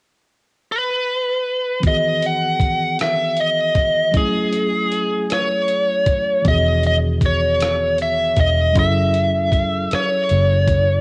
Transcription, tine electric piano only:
1.80 4.11 D#3 soft
1.80 4.09 E3 soft
1.80 4.09 B3 soft
1.86 4.12 F#4 soft
1.86 4.12 G#4 medium
4.11 6.40 F#3 soft
4.11 6.41 C#4 soft
4.11 6.41 E4 soft
4.18 6.44 A3 soft
4.18 6.43 G#4 soft
6.42 8.70 E3 soft
6.42 8.71 B3 soft
6.46 8.72 D#3 soft
6.46 8.73 F#4 soft
6.46 8.74 G#4 medium
8.72 11.01 F#3 medium
8.72 11.01 C#4 soft
8.77 11.01 E4 soft
8.77 11.01 G#4 soft
8.81 11.01 A4 soft

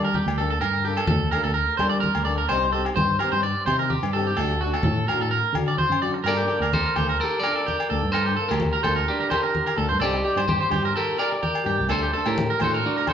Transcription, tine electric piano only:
0.00 0.20 G3 medium
0.26 0.54 D2 medium
0.61 1.00 G2 medium
1.10 1.29 D2 loud
1.45 1.64 D2 medium
1.79 2.08 G3 medium
2.16 2.43 D2 medium
2.49 2.87 C2 medium
2.96 3.15 G2 medium
3.33 3.52 G2 medium
3.67 3.96 C3 medium
4.03 4.31 G2 medium
4.37 4.75 D2 medium
4.83 5.03 A2 medium
5.19 5.39 A2 medium
5.53 5.83 D3 medium
5.89 6.18 F#2 medium
6.24 6.44 G2 medium
6.61 6.80 D2 medium
6.97 7.15 D2 medium
7.90 8.01 D2 medium
8.03 8.11 G2 medium
8.14 8.33 G2 medium
8.51 8.69 D2 medium
8.85 9.04 D2 medium
9.77 9.88 D2 medium
9.91 10.02 G2 medium
10.00 10.20 C2 medium
10.37 10.56 G2 medium
10.72 10.91 G2 medium
11.65 11.76 G2 medium
11.79 11.90 C2 medium
11.89 12.09 D2 medium
12.26 12.45 A2 medium
12.60 12.80 A2 medium

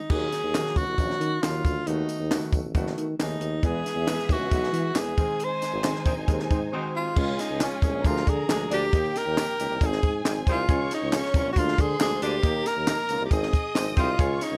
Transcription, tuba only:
0.10 0.29 D#2 loud
0.43 0.62 D#2 loud
0.76 0.85 C#2 medium
0.88 0.97 C2 medium
0.98 1.17 A#1 medium
1.20 1.39 D#3 medium
1.42 1.61 D#2 medium
1.65 1.83 D2 medium
1.86 2.05 D#2 loud
2.19 2.38 D#2 medium
2.52 2.62 B1 medium
2.64 2.73 A1 medium
2.75 2.93 F#1 medium
2.97 3.16 D#3 medium
3.19 3.38 D#2 medium
3.40 3.59 D#2 medium
3.63 3.82 E2 loud
3.95 4.14 E2 medium
4.29 4.39 D#2 medium
4.39 4.49 C#2 medium
4.51 4.70 B1 medium
4.72 4.92 E3 loud
4.95 5.14 E2 medium
5.73 5.92 G#1 loud
6.06 6.15 A#1 medium
6.17 6.26 G#1 medium
6.28 6.47 D#2 medium
6.51 6.69 G#2 medium
7.17 7.35 C#2 loud
7.49 7.68 C#2 medium
7.82 7.92 C2 medium
7.93 8.06 A#1 medium
8.05 8.23 D2 loud
8.27 8.46 D3 loud
8.48 8.67 D2 medium
8.70 8.89 D2 medium
8.93 9.12 D#2 loud
9.26 9.44 D#2 loud
9.60 9.68 C#2 medium
9.70 9.79 C2 medium
9.81 9.99 G#1 loud
10.03 10.21 G#2 medium
10.24 10.43 G#1 medium
10.47 10.65 C2 loud
10.69 10.87 C#2 loud
11.02 11.20 C#2 medium
11.34 11.43 C2 medium
11.46 11.58 A#1 medium
11.56 11.75 D2 loud
11.78 11.97 D3 loud
12.00 12.18 D2 medium
12.22 12.40 D2 loud
12.43 12.62 D#2 loud
12.76 12.95 D#2 loud
13.09 13.19 C#2 medium
13.20 13.30 C2 medium
13.31 13.50 G#1 loud
13.75 13.94 G#1 medium
13.97 14.16 C2 medium
14.19 14.38 C#2 loud
14.51 14.57 C#2 medium

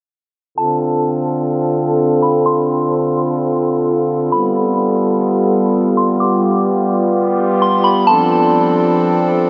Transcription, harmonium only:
0.58 4.29 D3 medium
0.58 4.29 C4 medium
0.58 8.04 F4 medium
0.58 6.17 A4 medium
4.33 8.04 G3 medium
4.33 8.04 B3 medium
6.21 8.06 G4 medium
8.08 9.50 F3 medium
8.08 9.50 C4 medium
8.08 9.50 D4 medium
8.08 9.50 A4 medium

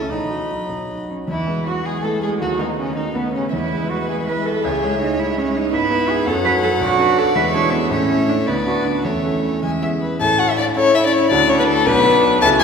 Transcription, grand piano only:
0.00 0.13 C#2 soft
0.00 0.13 A3 soft
0.00 0.13 E4 soft
0.00 0.13 A4 soft
0.10 0.68 B1 soft
0.30 0.62 F#4 soft
0.50 0.81 F#3 soft
0.69 1.27 B1 soft
0.89 1.21 F#4 soft
1.08 1.28 F#3 soft
1.28 1.46 E2 medium
1.47 1.99 G#3 soft
1.47 2.00 E4 soft
1.47 2.00 B4 soft
2.04 2.37 G#3 soft
2.04 2.37 E4 soft
2.04 2.38 B4 soft
2.41 2.59 D#2 medium
2.60 3.11 A3 soft
2.60 3.11 B3 soft
2.60 3.12 B4 soft
3.15 3.49 A3 soft
3.15 3.49 B3 soft
3.15 3.50 B4 soft
3.53 3.71 E2 medium
3.72 4.23 G#3 soft
3.72 4.23 E4 soft
3.72 4.23 B4 medium
4.27 4.60 G#3 soft
4.27 4.61 E4 soft
4.27 4.61 B4 medium
4.65 4.82 C#2 medium
4.83 5.34 G#3 medium
4.83 5.34 E4 soft
4.83 5.34 C#5 medium
5.38 5.69 G#3 medium
5.38 5.70 E4 medium
5.38 5.70 C#5 medium
5.73 5.90 G#2 medium
5.90 6.23 B3 medium
5.90 6.23 E4 medium
5.90 6.23 B4 medium
6.26 6.44 F#2 medium
6.45 6.77 C#4 medium
6.45 6.77 F#4 medium
6.45 6.77 A4 medium
6.80 6.98 B1 medium
6.99 7.32 D4 medium
6.99 7.32 F#4 medium
6.99 7.32 B4 medium
7.36 7.53 E2 medium
7.54 7.87 D4 medium
7.54 7.87 E4 medium
7.54 7.88 G#4 medium
7.91 8.09 A2 medium
8.10 8.43 C#4 soft
8.10 8.44 E4 medium
8.10 8.44 A4 medium
8.47 8.66 D2 medium
8.66 9.01 D4 soft
8.66 9.01 F#4 soft
8.66 9.02 B4 medium
9.05 9.24 E2 medium
9.24 9.59 C#4 soft
9.24 9.59 E4 soft
9.24 9.59 A4 soft
9.63 9.82 E2 soft
9.82 10.17 B3 soft
9.82 10.17 E4 soft
9.82 10.17 G#4 soft
10.21 10.75 A2 medium
10.77 11.28 C#4 medium
10.77 11.28 E4 medium
10.77 11.28 A4 medium
11.31 11.85 D2 medium
11.31 11.83 D4 medium
11.31 11.83 F#4 medium
11.31 11.83 A4 medium
11.86 12.40 B1 loud
11.86 12.37 D4 medium
11.86 12.38 F#4 medium
11.86 12.38 B4 medium
12.42 12.64 C#2 medium
12.42 12.64 C#4 medium
12.42 12.64 E4 medium
12.42 12.64 E5 medium

